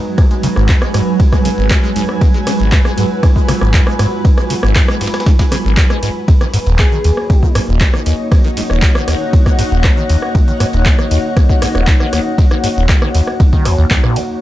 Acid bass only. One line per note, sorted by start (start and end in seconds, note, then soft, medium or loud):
0.18 0.22 G#2 medium
0.31 0.35 G#3 medium
0.43 0.48 C#3 loud
0.56 0.70 G#1 loud
0.69 0.76 G#2 loud
0.82 0.89 G#3 medium
0.94 1.01 G#2 loud
1.20 1.24 G#2 medium
1.33 1.37 G#3 medium
1.45 1.49 C#3 loud
1.58 1.72 G#1 loud
1.71 1.78 G#2 loud
1.83 1.90 G#3 medium
1.96 2.03 G#2 loud
2.21 2.26 G#2 medium
2.34 2.38 G#3 medium
2.47 2.51 C#3 loud
2.60 2.74 G#1 loud
2.72 2.79 G#2 loud
2.85 2.92 G#3 medium
2.98 3.05 G#2 loud
3.23 3.27 G#2 medium
3.36 3.40 G#3 medium
3.49 3.53 C#3 loud
3.61 3.75 G#1 loud
3.74 3.81 G#2 loud
3.87 3.94 G#3 medium
3.99 4.06 G#2 loud
4.25 4.29 G#2 medium
4.38 4.42 G#3 medium
4.50 4.54 C#3 loud
4.63 4.77 G#1 loud
4.76 4.83 G#2 loud
4.88 4.95 G#3 medium
5.01 5.08 G#2 loud
5.26 5.31 G#2 medium
5.39 5.43 G#3 medium
5.52 5.56 C#3 loud
5.65 5.79 G#1 loud
5.77 5.84 G#2 loud
5.90 5.97 G#3 medium
6.03 6.10 G#2 loud
6.28 6.32 D#2 medium
6.41 6.45 D#3 medium
6.54 6.58 G#2 loud
6.66 6.80 D#1 loud
6.79 6.86 D#2 loud
6.92 6.99 D#3 medium
7.04 7.11 D#2 loud
7.30 7.34 D#2 medium
7.43 7.47 D#3 medium
7.55 7.59 G#2 loud
7.68 7.82 D#1 loud
7.81 7.88 D#2 loud
7.94 8.00 D#3 medium
8.06 8.13 D#2 loud
8.31 8.36 D#2 medium
8.44 8.49 D#3 medium
8.57 8.61 G#2 loud
8.70 8.84 D#1 loud
8.82 8.89 D#2 loud
8.95 9.02 D#3 medium
9.08 9.15 D#2 loud
9.33 9.37 D#2 medium
9.46 9.50 D#3 medium
9.59 9.63 G#2 loud
9.71 9.86 D#1 loud
9.84 9.91 D#2 loud
9.97 10.04 D#3 medium
10.09 10.17 D#2 loud
10.35 10.39 D#2 medium
10.48 10.52 D#3 medium
10.60 10.65 G#2 loud
10.73 10.87 D#1 loud
10.86 10.93 D#2 loud
10.99 11.06 D#3 medium
11.11 11.18 D#2 loud
11.37 11.41 D#2 medium
11.49 11.54 D#3 medium
11.62 11.66 G#2 loud
11.75 11.89 D#1 loud
11.87 11.95 D#2 loud
12.00 12.07 D#3 medium
12.13 12.20 D#2 medium
12.38 12.43 D#2 medium
12.51 12.55 D#3 medium
12.64 12.68 G#2 loud
12.76 12.91 D#1 loud
12.89 12.96 D#2 loud
13.02 13.09 D#3 medium
13.15 13.22 D#2 loud
13.40 13.44 D#2 medium
13.53 13.67 D#3 medium
13.65 13.76 D#2 loud
13.78 13.85 D#2 loud
13.91 13.98 D#2 loud
14.04 14.18 A#2 loud
14.16 14.21 F#3 medium